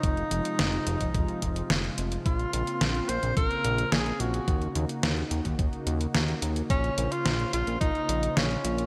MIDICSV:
0, 0, Header, 1, 5, 480
1, 0, Start_track
1, 0, Key_signature, -5, "minor"
1, 0, Tempo, 555556
1, 29, Time_signature, 4, 2, 24, 8
1, 7656, End_track
2, 0, Start_track
2, 0, Title_t, "Tenor saxophone"
2, 0, Program_c, 0, 66
2, 0, Note_on_c, 0, 63, 101
2, 1709, Note_off_c, 0, 63, 0
2, 1952, Note_on_c, 0, 65, 97
2, 2672, Note_on_c, 0, 72, 106
2, 2685, Note_off_c, 0, 65, 0
2, 2906, Note_off_c, 0, 72, 0
2, 2911, Note_on_c, 0, 70, 108
2, 3389, Note_on_c, 0, 68, 100
2, 3402, Note_off_c, 0, 70, 0
2, 3630, Note_on_c, 0, 66, 88
2, 3643, Note_off_c, 0, 68, 0
2, 4110, Note_off_c, 0, 66, 0
2, 5791, Note_on_c, 0, 61, 105
2, 6150, Note_on_c, 0, 65, 106
2, 6163, Note_off_c, 0, 61, 0
2, 6503, Note_off_c, 0, 65, 0
2, 6508, Note_on_c, 0, 65, 105
2, 6732, Note_off_c, 0, 65, 0
2, 6747, Note_on_c, 0, 63, 109
2, 7229, Note_on_c, 0, 61, 96
2, 7242, Note_off_c, 0, 63, 0
2, 7656, Note_off_c, 0, 61, 0
2, 7656, End_track
3, 0, Start_track
3, 0, Title_t, "Analog synth pad"
3, 0, Program_c, 1, 89
3, 30, Note_on_c, 1, 48, 81
3, 30, Note_on_c, 1, 53, 71
3, 30, Note_on_c, 1, 56, 73
3, 30, Note_on_c, 1, 65, 86
3, 1931, Note_off_c, 1, 48, 0
3, 1931, Note_off_c, 1, 53, 0
3, 1931, Note_off_c, 1, 56, 0
3, 1951, Note_on_c, 1, 58, 72
3, 1951, Note_on_c, 1, 60, 74
3, 1952, Note_on_c, 1, 49, 78
3, 3835, Note_off_c, 1, 65, 0
3, 3851, Note_off_c, 1, 60, 0
3, 3870, Note_on_c, 1, 66, 83
3, 3871, Note_on_c, 1, 63, 72
3, 5756, Note_off_c, 1, 49, 0
3, 5770, Note_off_c, 1, 66, 0
3, 5771, Note_off_c, 1, 63, 0
3, 5789, Note_on_c, 1, 49, 78
3, 5789, Note_on_c, 1, 65, 86
3, 5789, Note_on_c, 1, 72, 73
3, 7656, Note_off_c, 1, 49, 0
3, 7656, Note_off_c, 1, 58, 0
3, 7656, Note_off_c, 1, 65, 0
3, 7656, Note_off_c, 1, 72, 0
3, 7656, End_track
4, 0, Start_track
4, 0, Title_t, "Analog synth bass"
4, 0, Program_c, 2, 38
4, 30, Note_on_c, 2, 29, 103
4, 202, Note_off_c, 2, 29, 0
4, 269, Note_on_c, 2, 29, 95
4, 355, Note_off_c, 2, 29, 0
4, 510, Note_on_c, 2, 29, 105
4, 682, Note_off_c, 2, 29, 0
4, 750, Note_on_c, 2, 29, 84
4, 836, Note_off_c, 2, 29, 0
4, 870, Note_on_c, 2, 29, 86
4, 956, Note_off_c, 2, 29, 0
4, 990, Note_on_c, 2, 29, 82
4, 1076, Note_off_c, 2, 29, 0
4, 1229, Note_on_c, 2, 29, 102
4, 1402, Note_off_c, 2, 29, 0
4, 1471, Note_on_c, 2, 29, 78
4, 1643, Note_off_c, 2, 29, 0
4, 1712, Note_on_c, 2, 29, 82
4, 1883, Note_off_c, 2, 29, 0
4, 1950, Note_on_c, 2, 34, 98
4, 2122, Note_off_c, 2, 34, 0
4, 2190, Note_on_c, 2, 34, 99
4, 2276, Note_off_c, 2, 34, 0
4, 2430, Note_on_c, 2, 34, 106
4, 2602, Note_off_c, 2, 34, 0
4, 2670, Note_on_c, 2, 34, 83
4, 2756, Note_off_c, 2, 34, 0
4, 2790, Note_on_c, 2, 34, 86
4, 2876, Note_off_c, 2, 34, 0
4, 2910, Note_on_c, 2, 34, 79
4, 2996, Note_off_c, 2, 34, 0
4, 3150, Note_on_c, 2, 34, 101
4, 3322, Note_off_c, 2, 34, 0
4, 3390, Note_on_c, 2, 34, 98
4, 3562, Note_off_c, 2, 34, 0
4, 3629, Note_on_c, 2, 34, 81
4, 3802, Note_off_c, 2, 34, 0
4, 3869, Note_on_c, 2, 39, 103
4, 4042, Note_off_c, 2, 39, 0
4, 4109, Note_on_c, 2, 39, 98
4, 4195, Note_off_c, 2, 39, 0
4, 4348, Note_on_c, 2, 39, 102
4, 4521, Note_off_c, 2, 39, 0
4, 4588, Note_on_c, 2, 39, 80
4, 4675, Note_off_c, 2, 39, 0
4, 4709, Note_on_c, 2, 39, 87
4, 4795, Note_off_c, 2, 39, 0
4, 4829, Note_on_c, 2, 39, 79
4, 4916, Note_off_c, 2, 39, 0
4, 5068, Note_on_c, 2, 39, 105
4, 5241, Note_off_c, 2, 39, 0
4, 5309, Note_on_c, 2, 39, 96
4, 5481, Note_off_c, 2, 39, 0
4, 5548, Note_on_c, 2, 39, 81
4, 5721, Note_off_c, 2, 39, 0
4, 5789, Note_on_c, 2, 34, 104
4, 5962, Note_off_c, 2, 34, 0
4, 6028, Note_on_c, 2, 34, 98
4, 6115, Note_off_c, 2, 34, 0
4, 6268, Note_on_c, 2, 34, 103
4, 6441, Note_off_c, 2, 34, 0
4, 6509, Note_on_c, 2, 34, 81
4, 6595, Note_off_c, 2, 34, 0
4, 6629, Note_on_c, 2, 34, 85
4, 6716, Note_off_c, 2, 34, 0
4, 6749, Note_on_c, 2, 34, 79
4, 6835, Note_off_c, 2, 34, 0
4, 6988, Note_on_c, 2, 34, 99
4, 7161, Note_off_c, 2, 34, 0
4, 7229, Note_on_c, 2, 34, 92
4, 7402, Note_off_c, 2, 34, 0
4, 7470, Note_on_c, 2, 34, 84
4, 7642, Note_off_c, 2, 34, 0
4, 7656, End_track
5, 0, Start_track
5, 0, Title_t, "Drums"
5, 30, Note_on_c, 9, 36, 124
5, 30, Note_on_c, 9, 42, 51
5, 116, Note_off_c, 9, 36, 0
5, 116, Note_off_c, 9, 42, 0
5, 149, Note_on_c, 9, 42, 25
5, 236, Note_off_c, 9, 42, 0
5, 269, Note_on_c, 9, 42, 83
5, 356, Note_off_c, 9, 42, 0
5, 390, Note_on_c, 9, 42, 51
5, 476, Note_off_c, 9, 42, 0
5, 510, Note_on_c, 9, 38, 118
5, 510, Note_on_c, 9, 42, 49
5, 596, Note_off_c, 9, 38, 0
5, 596, Note_off_c, 9, 42, 0
5, 629, Note_on_c, 9, 42, 25
5, 716, Note_off_c, 9, 42, 0
5, 749, Note_on_c, 9, 42, 91
5, 835, Note_off_c, 9, 42, 0
5, 869, Note_on_c, 9, 42, 47
5, 870, Note_on_c, 9, 36, 62
5, 955, Note_off_c, 9, 42, 0
5, 956, Note_off_c, 9, 36, 0
5, 989, Note_on_c, 9, 42, 51
5, 990, Note_on_c, 9, 36, 125
5, 1076, Note_off_c, 9, 36, 0
5, 1076, Note_off_c, 9, 42, 0
5, 1110, Note_on_c, 9, 42, 24
5, 1196, Note_off_c, 9, 42, 0
5, 1229, Note_on_c, 9, 42, 89
5, 1230, Note_on_c, 9, 36, 61
5, 1316, Note_off_c, 9, 36, 0
5, 1316, Note_off_c, 9, 42, 0
5, 1349, Note_on_c, 9, 42, 49
5, 1436, Note_off_c, 9, 42, 0
5, 1469, Note_on_c, 9, 38, 122
5, 1469, Note_on_c, 9, 42, 50
5, 1555, Note_off_c, 9, 38, 0
5, 1555, Note_off_c, 9, 42, 0
5, 1589, Note_on_c, 9, 42, 25
5, 1676, Note_off_c, 9, 42, 0
5, 1710, Note_on_c, 9, 42, 88
5, 1796, Note_off_c, 9, 42, 0
5, 1830, Note_on_c, 9, 42, 48
5, 1916, Note_off_c, 9, 42, 0
5, 1950, Note_on_c, 9, 36, 117
5, 1950, Note_on_c, 9, 42, 51
5, 2036, Note_off_c, 9, 36, 0
5, 2036, Note_off_c, 9, 42, 0
5, 2069, Note_on_c, 9, 42, 24
5, 2156, Note_off_c, 9, 42, 0
5, 2189, Note_on_c, 9, 42, 83
5, 2276, Note_off_c, 9, 42, 0
5, 2310, Note_on_c, 9, 42, 48
5, 2396, Note_off_c, 9, 42, 0
5, 2429, Note_on_c, 9, 38, 110
5, 2429, Note_on_c, 9, 42, 48
5, 2516, Note_off_c, 9, 38, 0
5, 2516, Note_off_c, 9, 42, 0
5, 2549, Note_on_c, 9, 42, 25
5, 2635, Note_off_c, 9, 42, 0
5, 2669, Note_on_c, 9, 42, 90
5, 2755, Note_off_c, 9, 42, 0
5, 2789, Note_on_c, 9, 42, 47
5, 2876, Note_off_c, 9, 42, 0
5, 2910, Note_on_c, 9, 36, 122
5, 2910, Note_on_c, 9, 42, 50
5, 2996, Note_off_c, 9, 36, 0
5, 2996, Note_off_c, 9, 42, 0
5, 3030, Note_on_c, 9, 42, 23
5, 3116, Note_off_c, 9, 42, 0
5, 3149, Note_on_c, 9, 42, 84
5, 3236, Note_off_c, 9, 42, 0
5, 3269, Note_on_c, 9, 42, 49
5, 3356, Note_off_c, 9, 42, 0
5, 3389, Note_on_c, 9, 38, 116
5, 3389, Note_on_c, 9, 42, 51
5, 3475, Note_off_c, 9, 38, 0
5, 3475, Note_off_c, 9, 42, 0
5, 3509, Note_on_c, 9, 42, 25
5, 3596, Note_off_c, 9, 42, 0
5, 3629, Note_on_c, 9, 42, 87
5, 3715, Note_off_c, 9, 42, 0
5, 3749, Note_on_c, 9, 42, 47
5, 3835, Note_off_c, 9, 42, 0
5, 3869, Note_on_c, 9, 36, 114
5, 3869, Note_on_c, 9, 42, 49
5, 3955, Note_off_c, 9, 42, 0
5, 3956, Note_off_c, 9, 36, 0
5, 3988, Note_on_c, 9, 42, 24
5, 4074, Note_off_c, 9, 42, 0
5, 4108, Note_on_c, 9, 42, 86
5, 4194, Note_off_c, 9, 42, 0
5, 4228, Note_on_c, 9, 42, 49
5, 4314, Note_off_c, 9, 42, 0
5, 4348, Note_on_c, 9, 38, 112
5, 4348, Note_on_c, 9, 42, 49
5, 4434, Note_off_c, 9, 38, 0
5, 4434, Note_off_c, 9, 42, 0
5, 4469, Note_on_c, 9, 42, 25
5, 4555, Note_off_c, 9, 42, 0
5, 4589, Note_on_c, 9, 42, 88
5, 4675, Note_off_c, 9, 42, 0
5, 4709, Note_on_c, 9, 36, 57
5, 4709, Note_on_c, 9, 42, 45
5, 4796, Note_off_c, 9, 36, 0
5, 4796, Note_off_c, 9, 42, 0
5, 4829, Note_on_c, 9, 36, 113
5, 4830, Note_on_c, 9, 42, 47
5, 4916, Note_off_c, 9, 36, 0
5, 4916, Note_off_c, 9, 42, 0
5, 4950, Note_on_c, 9, 42, 23
5, 5036, Note_off_c, 9, 42, 0
5, 5070, Note_on_c, 9, 42, 83
5, 5156, Note_off_c, 9, 42, 0
5, 5190, Note_on_c, 9, 42, 46
5, 5276, Note_off_c, 9, 42, 0
5, 5310, Note_on_c, 9, 38, 113
5, 5310, Note_on_c, 9, 42, 49
5, 5396, Note_off_c, 9, 38, 0
5, 5396, Note_off_c, 9, 42, 0
5, 5429, Note_on_c, 9, 42, 25
5, 5516, Note_off_c, 9, 42, 0
5, 5549, Note_on_c, 9, 42, 84
5, 5636, Note_off_c, 9, 42, 0
5, 5670, Note_on_c, 9, 42, 49
5, 5756, Note_off_c, 9, 42, 0
5, 5789, Note_on_c, 9, 36, 113
5, 5789, Note_on_c, 9, 42, 51
5, 5876, Note_off_c, 9, 36, 0
5, 5876, Note_off_c, 9, 42, 0
5, 5910, Note_on_c, 9, 42, 24
5, 5996, Note_off_c, 9, 42, 0
5, 6029, Note_on_c, 9, 42, 83
5, 6115, Note_off_c, 9, 42, 0
5, 6150, Note_on_c, 9, 42, 51
5, 6236, Note_off_c, 9, 42, 0
5, 6269, Note_on_c, 9, 38, 108
5, 6269, Note_on_c, 9, 42, 49
5, 6356, Note_off_c, 9, 38, 0
5, 6356, Note_off_c, 9, 42, 0
5, 6390, Note_on_c, 9, 42, 26
5, 6476, Note_off_c, 9, 42, 0
5, 6509, Note_on_c, 9, 42, 91
5, 6595, Note_off_c, 9, 42, 0
5, 6629, Note_on_c, 9, 42, 48
5, 6716, Note_off_c, 9, 42, 0
5, 6749, Note_on_c, 9, 36, 114
5, 6750, Note_on_c, 9, 42, 50
5, 6836, Note_off_c, 9, 36, 0
5, 6837, Note_off_c, 9, 42, 0
5, 6870, Note_on_c, 9, 42, 25
5, 6957, Note_off_c, 9, 42, 0
5, 6990, Note_on_c, 9, 42, 86
5, 7076, Note_off_c, 9, 42, 0
5, 7111, Note_on_c, 9, 42, 50
5, 7197, Note_off_c, 9, 42, 0
5, 7230, Note_on_c, 9, 38, 111
5, 7230, Note_on_c, 9, 42, 50
5, 7317, Note_off_c, 9, 38, 0
5, 7317, Note_off_c, 9, 42, 0
5, 7350, Note_on_c, 9, 42, 24
5, 7437, Note_off_c, 9, 42, 0
5, 7470, Note_on_c, 9, 42, 90
5, 7556, Note_off_c, 9, 42, 0
5, 7590, Note_on_c, 9, 42, 46
5, 7656, Note_off_c, 9, 42, 0
5, 7656, End_track
0, 0, End_of_file